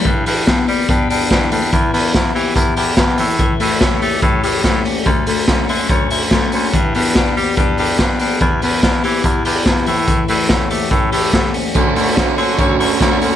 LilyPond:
<<
  \new Staff \with { instrumentName = "Clean electric guitar" } { \time 4/4 \key d \major \tempo 4 = 144 e8 e8 b8 d'8 b8 d'8 e8 a16 b16 | e8 b8 e'8 g'8 e'8 g'8 b8 e8 | e8 a8 cis'8 g'8 cis'8 g'8 a8 cis'8 | a8 a8 cis'8 e'16 fis'16 cis'8 e'16 fis'16 a8 cis'8 |
e8 b8 d'8 g'8 d'8 g'8 b8 d'8 | e8 b8 d'16 e'16 g'8 e'8 g'8 b8 e8 | e8 a8 cis'8 g'8 cis'8 g'8 a8 cis'8 | a8 a8 cis'8 fis'8 cis'8 e'16 fis'16 a8 cis'8 | }
  \new Staff \with { instrumentName = "Overdriven electric guitar" } { \time 4/4 \key d \major r1 | r1 | r1 | r1 |
r1 | r1 | r1 | <d a cis' fis'>8 <a cis' fis'>8 <d a cis' fis'>8 <a cis' fis'>8 <d a cis' fis'>8 <a cis' fis'>8 <d a cis' fis'>8 <a cis' fis'>8 | }
  \new Staff \with { instrumentName = "Baritone saxophone" } { \clef bass \time 4/4 \key d \major g,8 g,8 g,8 g8 g,8 g,8 g,8 g,8 | e,8 e,8 e,8 e8 e,8 e,8 e,8 a,8~ | a,8 a,8 a,8 a8 a,8 a,8 a,8 r8 | d,8 d,8 d,8 d8 d,8 d,8 d,8 d,8 |
g,8 g,8 g,8 g8 g,8 g,8 g,8 g,8 | e,8 e,8 e,8 e8 e,8 e,8 e,8 a,8~ | a,8 a,8 a,8 a8 a,8 a,8 a,8 r8 | d,8 d,8 d,8 d8 d,8 d,8 d,8 d,8 | }
  \new DrumStaff \with { instrumentName = "Drums" } \drummode { \time 4/4 <hh bd>8 hho8 <hh bd sn>8 hho8 <hh bd>8 hho8 <hh bd sn>8 hho8 | <hh bd>8 hho8 <hh bd sn>8 hho8 <hh bd>8 hho8 <hh bd sn>8 hho8 | <hh bd>8 hho8 <hh bd sn>8 hho8 <hh bd>8 hho8 <hh bd sn>8 hho8 | <hh bd>8 hho8 <hh bd sn>8 hho8 <hh bd>8 hho8 <hh bd sn>8 hho8 |
<hh bd>8 hho8 <hh bd sn>8 hho8 <hh bd>8 hho8 <hh bd sn>8 hho8 | <hh bd>8 hho8 <hh bd sn>8 hho8 <hh bd>8 hho8 <hh bd sn>8 hho8 | <hh bd>8 hho8 <hh bd sn>8 hho8 <hh bd>8 hho8 <hh bd sn>8 hho8 | <hh bd>8 hho8 <hh bd sn>8 hho8 <hh bd>8 hho8 <hh bd sn>8 hho8 | }
>>